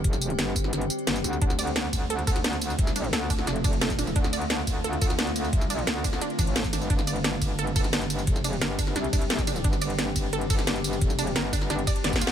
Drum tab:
RD |------------------------------------------------|------x-----------x-----------x-----------x-----|------x-----------x-----------x-----------x-----|------x-----------x-----------x-----------x-----|
HH |x-----x--x--x-----o-----x--x--x--x--x--x--x-----|x-----x--x--x-----x-----x--x--x--x--x--x--x-----|x-----x--x--x-----o-----x--x--x--x--x--x--x-----|x-----x--x--x-----x-----x--x--x--x--x--x--x-----|
TB |---x--x-----------x-----------x--------x--x--x--|---x--x-----------x-----------x-----------x--x--|---x--x-----------x-----------x--------x--x--x--|---x--x-----------x-----------x-----------x--x--|
SD |---o--------o--------o--o-----------o-----o-----|---o--------o--------------------o--o-----------|---o--------o--------o--o-----------o-----o-----|---o--------o--------------------o--o-----------|
BD |o-----------------o-----------------------------|o-----------------o-----------o-----------------|o-----------------o-----------o--------o--------|o-----------------o-----------o-----------------|

RD |------x-----------x-----------x-----------x-----|------x-----------x-----------x-----------x-----|------x-----------x-----------x-----------x-----|------x-----------x-----------x-----------x-----|
HH |x-----x--x--x-----o-----x--x--x--x--x--x--x-----|x-----x--x--x-----x-----x--x--x--x--x--x--x-----|x-----x--x--x-----o-----x--x--x--x--x--x--x-----|x-----x--x--x-----x-----x--x--x--x--x--x--x-----|
TB |---x--x-----------x-----------x--------x--x--x--|---x--x-----------x-----------x-----------x--x--|---x--x-----------x-----------x--------x--x--x--|---x--x-----------x-----------x-----------x--x--|
SD |---o--------o--------o--o-----------o-----o-----|---o--------o--------------------o--o-----------|---o--------o--------o--o-----------o-----o-----|---o--------o--------------------o--o-----------|
BD |o-----------------o-----------o--------o--------|o-----------------o-----------o-----------------|o-----------------o-----------o--------o--------|o-----------------o-----------o-----------------|

RD |------x-----------x-----------x-----------x-----|
HH |x-----x--x--x-----o-----x--x--x--x--x--x--x-----|
TB |---x--x-----------x-----------x--------x--x-----|
SD |---o--------o--------o--o-----------o---o---o---|
BD |o-----------------o-----------o--------o--------|